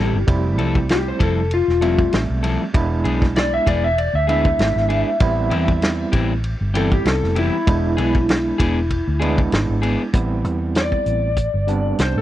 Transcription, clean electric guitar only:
0.00 0.17 G3 medium
0.00 0.17 C4 medium
0.00 0.17 E4 medium
0.00 0.17 A4 medium
0.58 0.79 F3 medium
0.58 0.79 C4 medium
0.58 0.78 E4 medium
0.58 0.78 A4 medium
1.19 1.40 F3 medium
1.19 1.40 C4 medium
1.19 1.40 E4 medium
1.19 1.39 A4 medium
1.81 2.02 F3 medium
1.81 2.02 C4 medium
1.81 2.02 E4 medium
1.81 2.01 A4 medium
2.43 2.64 F3 medium
2.43 2.63 C4 medium
2.43 2.63 E4 medium
2.43 2.63 A4 medium
3.04 3.25 B3 medium
3.04 3.25 D4 medium
3.04 3.24 G#4 medium
3.66 3.87 B3 medium
3.66 3.86 D4 medium
3.66 3.86 G#4 medium
4.27 4.48 B3 medium
4.27 4.48 D4 medium
4.27 4.47 G#4 medium
4.89 5.10 B3 medium
4.89 5.09 D4 medium
4.89 5.09 G#4 medium
5.50 5.71 E3 medium
5.50 5.71 C4 medium
5.50 5.71 E4 medium
5.50 5.70 G4 medium
6.12 6.33 E3 medium
6.12 6.33 C4 medium
6.12 6.32 E4 medium
6.12 6.32 G4 medium
6.74 6.95 E3 medium
6.74 6.95 C4 medium
6.74 6.94 E4 medium
6.74 6.94 G4 medium
7.35 7.56 E3 medium
7.35 7.56 C4 medium
7.35 7.56 E4 medium
7.35 7.55 G4 medium
7.97 8.18 B3 medium
7.97 8.17 D4 medium
7.97 8.17 G#4 medium
8.58 8.79 B3 medium
8.58 8.79 D4 medium
8.58 8.78 G#4 medium
9.20 9.41 B3 medium
9.20 9.40 D4 medium
9.20 9.40 G#4 medium
9.82 10.03 B3 medium
9.82 10.02 D4 medium
9.82 10.02 G#4 medium

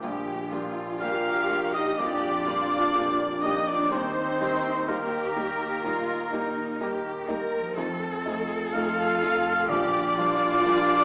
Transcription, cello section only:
0.03 0.48 G4 medium
0.52 1.01 F4 medium
1.01 1.98 G4 medium
1.99 2.46 G4 medium
2.47 2.95 F4 medium
2.96 3.91 D4 medium
3.92 4.88 D#4 medium
4.89 5.84 G4 medium
5.84 6.32 F4 medium
6.32 6.80 D#4 medium
6.81 7.29 G4 medium
7.29 7.77 A#4 medium
7.77 9.66 A4 medium
9.70 10.17 G4 medium
10.17 11.04 F4 medium

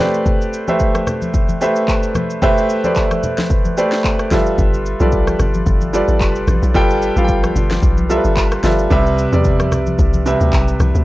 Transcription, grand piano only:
0.00 0.53 A3 medium
0.00 0.53 G4 medium
0.00 0.53 B4 medium
0.00 0.54 C5 medium
0.00 0.54 D5 medium
0.68 1.43 A3 medium
0.68 1.43 G4 medium
0.68 1.43 B4 medium
0.68 1.44 C5 medium
0.68 1.44 E5 medium
1.61 2.27 A3 medium
1.61 2.27 G4 medium
1.61 2.27 B4 medium
1.61 2.28 C5 medium
1.61 2.28 E5 loud
2.42 2.75 A3 loud
2.42 2.75 G4 loud
2.42 2.75 B4 loud
2.42 2.76 C5 loud
2.42 2.76 E5 loud
2.84 3.59 A3 medium
2.84 3.59 G4 medium
2.84 3.60 B4 medium
2.84 3.60 C5 medium
2.84 3.60 D5 medium
3.77 4.22 A3 medium
3.77 4.22 G4 medium
3.77 4.22 B4 medium
3.77 4.22 C5 medium
3.77 4.22 D5 loud
4.31 4.85 G3 medium
4.31 4.86 F4 medium
4.31 4.86 A4 medium
4.31 4.86 B4 medium
4.31 4.86 E5 medium
5.00 5.75 G3 medium
5.00 5.76 F4 medium
5.00 5.76 A4 medium
5.00 5.76 B4 medium
5.00 5.76 D5 medium
5.93 6.59 G3 medium
5.93 6.60 F4 medium
5.93 6.60 A4 medium
5.93 6.60 B4 medium
5.93 6.60 D5 medium
6.74 7.07 G3 loud
6.74 7.08 F4 loud
6.74 7.08 A4 loud
6.74 7.08 B4 loud
6.74 7.08 G5 loud
7.16 7.92 G3 medium
7.16 7.92 F4 medium
7.16 7.92 A4 medium
7.16 7.92 B4 medium
7.16 7.23 F5 medium
7.24 7.96 G5 medium
8.09 8.54 G3 medium
8.09 8.54 F4 medium
8.09 8.54 A4 medium
8.09 8.17 A#4 medium
8.09 8.55 E5 medium
8.17 8.58 B4 medium
8.63 8.86 G3 medium
8.63 8.86 F4 medium
8.63 8.86 A4 medium
8.63 8.86 B4 medium
8.63 8.87 E5 medium
8.90 9.24 C3 loud
8.90 9.24 G3 loud
8.90 9.24 B4 loud
8.90 9.25 E5 loud
9.32 10.08 C3 medium
9.32 10.08 G3 medium
9.32 10.08 B4 medium
9.32 10.09 D5 medium
10.26 10.92 C3 medium
10.26 10.92 G3 medium
10.26 10.92 B4 medium
10.26 10.93 E5 medium

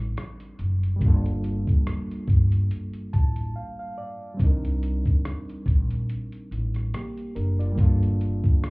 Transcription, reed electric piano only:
0.00 0.95 G3 medium
0.00 0.96 C4 medium
0.00 0.97 D4 medium
0.00 0.99 D#4 medium
0.00 1.00 A#4 medium
0.96 4.33 G3 medium
0.96 4.34 A#3 medium
1.02 4.36 D4 medium
1.02 4.37 F4 medium
1.08 4.39 A4 medium
3.13 3.52 A5 medium
3.56 3.77 F5 medium
3.79 3.96 F5 medium
3.98 4.37 D5 medium
4.34 7.71 G3 medium
4.34 6.88 C4 medium
4.40 6.89 D4 medium
4.40 6.91 D#4 medium
4.46 6.92 A#4 medium
6.94 7.34 A#3 soft
6.94 7.34 G4 medium
7.35 7.58 D4 medium
7.35 7.58 A#4 medium
7.59 7.80 F4 medium
7.59 7.99 D5 medium
7.72 8.70 G3 medium
7.72 8.70 A#3 medium
7.78 8.70 D4 medium
7.78 8.70 F4 medium
7.84 8.70 A4 medium

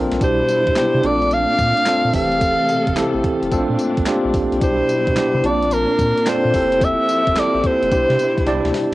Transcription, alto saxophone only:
0.24 1.07 C5 loud
1.06 1.35 D5 loud
1.33 2.14 F5 loud
2.15 3.20 F5 loud
4.64 5.48 C5 loud
5.46 5.75 D5 loud
5.73 6.31 A#4 loud
6.29 6.86 C5 loud
6.85 7.41 E5 loud
7.39 7.68 D5 loud
7.67 8.75 C5 loud

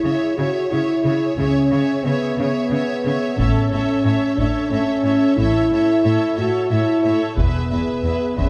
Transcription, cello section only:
0.05 0.13 C#3 soft
0.38 0.46 C#3 soft
0.72 0.80 C#3 soft
1.05 1.13 C#3 soft
1.38 1.46 C#3 soft
1.71 1.79 C#3 soft
2.04 2.12 C#3 soft
2.38 2.46 C#3 soft
2.70 2.78 C#3 soft
3.05 3.13 C#3 soft
3.38 3.46 A2 soft
3.72 3.80 A2 soft
4.05 4.13 A2 soft
4.38 4.46 A2 soft
4.71 4.79 A2 soft
5.04 5.12 A2 soft
5.37 5.45 A2 soft
5.72 5.80 A2 soft
6.05 6.13 A2 soft
6.38 6.46 A2 soft
6.71 6.79 A2 soft
7.05 7.13 A2 soft
7.39 7.47 E2 soft
7.72 7.80 E2 soft
8.04 8.12 E2 soft
8.37 8.45 E2 soft

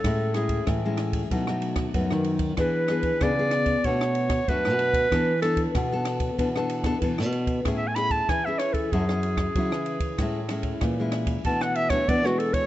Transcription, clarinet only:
0.00 0.35 A4 medium
0.36 0.66 G#4 medium
2.60 3.24 B4 medium
3.23 3.87 D5 loud
3.85 4.50 C#5 medium
4.49 5.41 B4 loud
5.42 5.62 A4 medium
7.77 7.89 E5 medium
7.87 7.97 G#5 medium
7.95 8.13 B5 loud
8.11 8.31 A5 medium
8.30 8.47 G#5 medium
8.45 8.60 E5 medium
8.59 8.75 C#5 medium
8.73 8.93 A4 medium
8.92 10.82 G#4 medium
11.46 11.64 A5 medium
11.62 11.77 F#5 medium
11.76 11.92 E5 loud
11.90 12.10 C#5 medium
12.09 12.28 D5 loud
12.26 12.41 F#4 medium
12.39 12.55 A4 medium
12.54 12.66 C#5 medium

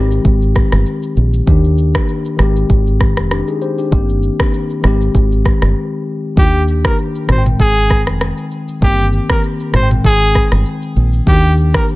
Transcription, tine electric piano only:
0.00 1.43 D#3 medium
0.00 1.44 G#3 medium
0.00 1.45 C4 medium
0.00 1.46 G4 medium
1.46 2.36 D#3 medium
1.46 2.39 A#3 medium
1.46 2.39 D4 medium
1.46 2.40 G4 medium
2.37 3.88 D#3 medium
2.37 3.89 G#3 medium
2.37 3.90 C4 medium
2.42 3.30 G4 medium
3.31 3.47 D4 medium
3.31 3.47 G4 medium
3.48 3.61 D#4 medium
3.48 3.61 G#4 medium
3.62 3.77 G4 medium
3.62 3.78 C5 medium
3.79 4.08 D4 medium
3.79 3.92 G4 medium
3.91 4.80 D#3 medium
3.91 4.84 A#3 medium
3.91 4.84 C4 medium
3.91 4.85 G4 medium
4.82 6.33 D#3 medium
4.82 6.34 G#3 medium
4.82 6.35 C4 medium
4.87 6.35 G4 medium
6.36 7.25 D#3 medium
6.36 7.29 A#3 medium
6.36 7.29 D4 medium
6.36 6.45 F4 medium
6.45 7.33 G4 medium
7.27 8.78 D#3 medium
7.27 8.79 G#3 medium
7.27 8.79 C4 medium
7.32 7.37 F#4 medium
7.38 8.84 G5 medium
8.81 9.70 D#3 medium
8.81 9.74 A#3 medium
8.81 9.74 C4 medium
8.81 9.75 G4 medium
9.71 11.23 D#3 medium
9.71 11.23 G#3 medium
9.71 11.24 C4 medium
9.76 9.82 F#4 medium
9.83 11.29 G5 medium
11.26 11.96 D#3 medium
11.26 11.96 A#3 medium
11.26 11.96 D4 medium
11.26 11.35 F#4 medium
11.35 11.96 G4 medium

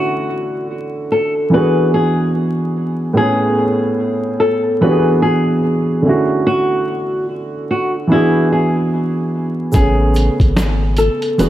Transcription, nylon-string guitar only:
0.00 0.66 F#4 loud
1.12 1.33 A4 medium
1.54 1.90 B4 medium
1.94 2.31 G#4 medium
3.17 3.95 G#4 loud
4.40 4.61 A4 medium
4.82 5.18 B4 medium
5.22 6.42 G#4 medium
6.47 7.24 F#4 loud
7.71 7.91 F#4 medium
8.12 8.48 E4 medium
8.52 8.89 G#4 medium
9.74 10.52 G#4 medium
10.98 11.19 A4 medium
11.39 11.49 B4 medium

